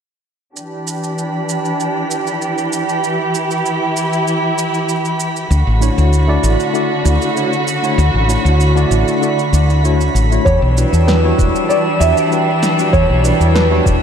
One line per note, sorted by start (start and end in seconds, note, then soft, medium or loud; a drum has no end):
0.55 5.47 E3 medium
0.55 3.01 D4 medium
0.55 5.47 G4 medium
0.55 10.47 B5 medium
0.55 shaker soft
0.87 shaker medium
1.04 shaker soft
1.18 shaker soft
1.49 shaker medium
1.65 shaker soft
1.80 shaker soft
2.11 shaker medium
2.27 shaker soft
2.42 shaker soft
2.58 shaker soft
2.73 shaker medium
2.89 shaker soft
3.03 5.48 E4 medium
3.03 shaker soft
3.35 shaker medium
3.51 shaker soft
3.66 shaker soft
3.97 shaker medium
4.13 shaker soft
4.28 shaker soft
4.58 shaker medium
4.74 shaker soft
4.89 shaker soft
5.05 shaker soft
5.20 shaker medium
5.36 shaker soft
5.50 5.62 D2 medium
5.50 10.41 D3 medium
5.50 10.41 F#4 medium
5.50 shaker soft
5.67 5.88 A1 medium
5.80 6.24 A3 medium
5.80 6.25 D4 medium
5.80 6.25 E4 medium
5.80 6.25 F#4 medium
5.80 6.25 C#5 medium
5.80 shaker medium
5.98 6.37 D2 medium
5.98 shaker soft
6.13 shaker soft
6.27 6.70 A3 medium
6.27 6.70 D4 medium
6.27 6.71 E4 medium
6.27 6.71 F#4 medium
6.27 6.71 D5 loud
6.43 6.55 A1 medium
6.43 shaker medium
6.60 shaker soft
6.73 6.91 A3 medium
6.73 6.91 D4 medium
6.73 6.91 E4 medium
6.73 6.91 F#4 medium
6.73 6.92 D5 medium
6.73 shaker soft
7.04 7.17 D2 medium
7.04 7.32 A3 medium
7.04 7.32 D4 medium
7.04 7.33 E4 medium
7.04 7.33 F#4 medium
7.04 7.33 D5 medium
7.04 shaker medium
7.22 shaker soft
7.35 7.52 A3 medium
7.35 7.53 D4 medium
7.35 7.53 E4 medium
7.35 7.53 F#4 medium
7.35 7.53 C#5 medium
7.35 shaker soft
7.53 shaker soft
7.68 shaker medium
7.82 7.98 A3 medium
7.82 7.99 D4 medium
7.82 7.99 E4 medium
7.82 7.99 F#4 medium
7.82 7.99 C#5 medium
7.82 shaker soft
7.98 8.10 D2 medium
7.98 shaker soft
8.14 8.36 A1 medium
8.28 8.72 A3 medium
8.28 8.72 D4 medium
8.28 8.72 E4 medium
8.28 8.73 F#4 medium
8.28 8.73 C#5 medium
8.28 shaker medium
8.45 8.84 D2 medium
8.45 shaker soft
8.61 shaker soft
8.75 9.18 A3 medium
8.75 9.18 D4 medium
8.75 9.18 E4 medium
8.75 9.19 F#4 medium
8.75 9.19 D5 medium
8.75 shaker soft
8.91 9.02 A1 medium
8.91 shaker medium
9.08 shaker soft
9.21 9.38 A3 medium
9.21 9.38 D4 medium
9.21 9.39 E4 medium
9.21 9.39 F#4 medium
9.21 9.39 D5 medium
9.21 shaker soft
9.39 shaker soft
9.52 10.08 D2 medium
9.52 9.80 A3 medium
9.52 9.80 D4 medium
9.52 9.81 E4 medium
9.52 9.81 F#4 medium
9.52 9.81 D5 medium
9.52 shaker medium
9.70 shaker soft
9.83 10.00 A3 medium
9.83 10.00 D4 medium
9.83 10.01 E4 medium
9.83 10.01 F#4 medium
9.83 10.01 C#5 medium
9.83 shaker soft
10.01 shaker soft
10.15 10.37 A1 medium
10.15 shaker medium
10.31 10.44 A3 medium
10.31 10.44 D4 medium
10.31 10.44 E4 medium
10.31 10.45 F#4 medium
10.31 10.45 C#5 medium
10.31 shaker soft
10.45 10.57 E2 medium
10.45 14.03 E3 medium
10.45 14.03 G3 medium
10.45 14.03 D4 medium
10.45 11.03 C#5 medium
10.45 14.03 E6 medium
10.45 kick loud
10.45 shaker soft
10.62 10.84 B1 medium
10.76 11.20 G3 medium
10.76 11.20 D4 medium
10.76 11.20 E4 medium
10.76 11.20 F#4 medium
10.76 11.21 B4 medium
10.76 shaker medium
10.93 11.32 E2 medium
10.93 shaker soft
11.07 11.71 B4 medium
11.07 snare medium
11.07 shaker soft
11.23 11.66 G3 medium
11.23 11.66 D4 medium
11.23 11.66 E4 medium
11.23 11.66 F#4 medium
11.23 11.67 C#5 medium
11.39 11.50 E1 medium
11.39 kick loud
11.39 shaker medium
11.56 shaker soft
11.69 11.86 G3 medium
11.69 11.86 D4 medium
11.69 11.87 E4 medium
11.69 11.87 F#4 medium
11.69 11.87 C#5 medium
11.69 11.76 D5 loud
11.69 shaker soft
11.99 12.12 E2 medium
11.99 12.27 G3 medium
11.99 12.28 D4 medium
11.99 12.28 E4 medium
11.99 12.28 F#4 medium
11.99 12.29 C#5 medium
11.99 12.58 E5 loud
11.99 shaker medium
12.17 shaker soft
12.31 12.48 G3 medium
12.31 12.48 D4 medium
12.31 12.48 E4 medium
12.31 12.48 F#4 medium
12.31 12.49 B4 medium
12.31 shaker soft
12.63 snare medium
12.63 shaker medium
12.78 12.93 G3 medium
12.78 12.93 D4 medium
12.78 12.94 E4 medium
12.78 12.94 F#4 medium
12.78 12.94 B4 medium
12.78 shaker soft
12.93 13.05 E2 medium
12.93 13.57 C#5 loud
12.93 kick loud
12.93 shaker soft
13.10 13.31 B1 medium
13.23 13.67 G3 medium
13.23 13.67 D4 medium
13.23 13.67 E4 medium
13.23 13.67 F#4 medium
13.23 13.68 B4 medium
13.23 shaker medium
13.40 13.79 E2 medium
13.40 shaker soft
13.55 14.03 B4 medium
13.55 snare medium
13.55 shaker soft
13.70 14.03 G3 medium
13.70 14.03 D4 medium
13.70 14.03 E4 medium
13.70 14.03 F#4 medium
13.70 14.03 C#5 medium
13.86 13.97 E1 medium
13.86 kick loud
13.86 shaker medium